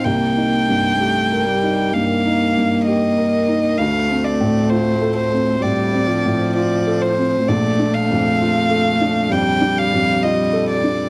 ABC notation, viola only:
X:1
M:4/4
L:1/8
Q:1/4=65
K:Cdor
V:1 name="Viola"
B,2 A, G, B,4 | A,4 G, F,3 | A,4 G,4 |]